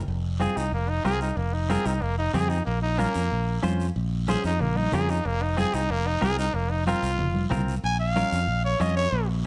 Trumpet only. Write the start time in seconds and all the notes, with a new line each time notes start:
0.41 G#4
0.57 D#4
0.74 A#3
0.89 D#4
1.06 G#4
1.22 D#4
1.37 A#3
1.54 D#4
1.70 G#4
1.86 D#4
2.02 A#3
2.18 D#4
2.34 G#4
2.49 D#4
2.66 A#3
2.82 D#4
2.99 A#3
4.29 G#4
4.45 D#4
4.61 A#3
4.77 D#4
4.94 G#4
5.10 D#4
5.26 A#3
5.42 D#4
5.59 G#4
5.74 D#4
5.91 A#3
6.07 D#4
6.24 G#4
6.39 D#4
6.55 A#3
6.70 D#4
6.87 F4
7.84 G#5
8.00 F5
8.65 C#5
8.81 D#5
8.97 C#5